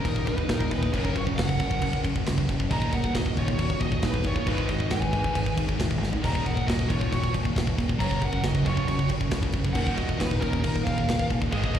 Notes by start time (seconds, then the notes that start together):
Already playing: D#2 A#2 D#3
0.04 D#1 D#2 A#2 D#4 A#4, kick, crash
0.16 kick
0.26 D#1 D#2 A#2 D#4 B4, kick, crash
0.37 D#2 A#2, kick
0.49 D#1 D#2 A#2 D#4 A#4, kick, snare, crash
0.61 D#2 A#2, kick
0.71 D#1 D#2 A#2 D#4 B4, kick, crash
0.82 D#2 A#2, kick
0.93 F#1 F#2 C#3 F#3 C#4 A#4, kick, crash
1.05 kick
1.15 F#1 F#2 C#3 F4 C#5, kick, crash
1.27 F#2 C#3, kick
1.36 F#1 F#2 C#3 A#4 F#5, kick, snare, crash
1.49 kick
1.58 F#1 F#2 C#3 F#3, kick, crash
1.70 F#2 C#3, kick
1.82 F#1 F#2 C#3, kick, crash
1.93 kick
2.04 F#1 F#2 C#3, kick, crash
2.16 F#2 C#3, kick
2.26 C#2 F#2 C#3, kick, snare, crash
2.38 F#2 C#3, kick
2.49 F#1 F#2 C#3, kick, crash
2.60 F#2 C#3, kick
2.70 D#1 D#2 A#2 D#3 D#5 A#5, kick, crash
2.82 kick
2.92 D#2 A#2 A#4 F#5, kick, crash
3.04 D#2 A#2, kick
3.14 D#1 D#2 A#2 F#4 D#5, kick, snare, crash
3.26 kick
3.35 D#1 D#2 A#2 D#3 F4 C#5, kick, crash
3.47 D#2 A#2, kick
3.58 D#1 D#2 A#2 F#4 C#5, kick, crash
3.70 kick
3.80 D#1 D#2 A#2 F#4 D#5, kick, crash
3.91 D#2 A#2, kick
4.02 D#1 D#2 A#2 D#4 B4, kick, snare, crash
4.14 D#2 A#2, kick
4.24 G1 D#2 A#2 F4 C#5, kick, crash
4.36 D#2 A#2, kick
4.45 G#1 G#2 D#3 G#3 D#4 B4, kick, crash
4.58 kick
4.68 G#1 G#2 D#3 F#4 D#5, kick, crash
4.78 G#2 D#3, kick
4.90 G#1 G#2 D#3 B4 G#5, kick, snare, crash
5.02 kick
5.12 G#1 G#2 D#3 G#3, kick, crash
5.23 G#2 D#3, kick
5.33 G#1 G#2 D#3, kick, crash
5.46 kick
5.56 G#1 G#2 D#3, kick, crash
5.67 G#2 D#3, kick
5.78 D#1 G#2 D#3, kick, snare, crash
5.90 G#2 D#3, kick
5.99 G#1 G#2 D#3, snare
6.11 G#2 D#3, floor tom
6.21 D#1 D#2 A#2 D#3 D#5 A#5, kick, splash, crash
6.35 kick
6.44 D#2 A#2 A#4 F#5, kick, crash
6.55 D#2 A#2, kick
6.67 D#1 D#2 A#2 F#4 D#5, kick, snare, crash
6.79 kick
6.87 D#1 D#2 A#2 D#3 F4 C#5, kick, crash
6.99 D#2 A#2, kick
7.11 D#1 D#2 A#2 F#4 C#5, kick, crash
7.24 kick
7.34 D#1 D#2 A#2, kick, crash
7.43 D#2 A#2, kick
7.55 D#1 D#2 A#2, kick, snare, crash
7.66 D#2 A#2, kick
7.77 D#1 D#2 A#2, kick, crash
7.88 D#2 A#2, kick
7.98 F#1 F#2 C#3 F#3 C#5 A#5, kick, crash
8.11 kick
8.21 F#1 F#2 C#3 F#5, kick, crash
8.25 A#4
8.32 F#2 C#3, kick
8.44 F#1 F#2 C#3 D#5, kick, snare, crash
8.48 F#4
8.55 kick
8.64 F#1 F#2 C#3 F#3 C#5, kick, crash
8.69 F4
8.76 F#2 C#3, kick
8.88 F#1 F#2 C#3 F#4 C#5, kick, crash
8.99 kick
9.09 F#1 F#2 C#3, kick, crash
9.20 F#2 C#3, kick
9.31 C#2 F#2 C#3, kick, snare, crash
9.42 F#2 C#3, kick
9.52 F#1 F#2 C#3, kick, crash
9.65 F#2 C#3, kick
9.73 D#1 D#2 A#2 D#3 A#4 F#5, kick, crash
9.87 kick
9.95 D#2 A#2 F#4 D#5, kick, crash
10.07 D#2 A#2, kick
10.18 D#1 D#2 A#2 D#4 B4, kick, snare, crash
10.31 kick
10.40 D#1 D#2 A#2 D#3 C#4 A#4, kick, crash
10.52 D#2 A#2, kick
10.60 D#2 D#4 A#4
10.64 D#1 A#2, kick, crash
10.76 kick
10.83 D#1 D#2 A#2 A#4 F5, kick
10.87 crash
10.98 D#2 A#2, kick
11.08 D#1 D#2 A#2, kick, snare, crash
11.19 D#2 A#2, kick
11.30 D#1 D#2 A#2, kick, crash
11.42 D#2 A#2, kick
11.52 G#1 G#2 D#3 G#3 G#4 D#5, kick, crash
11.64 kick
11.75 G#1 G#2 D#3, kick, crash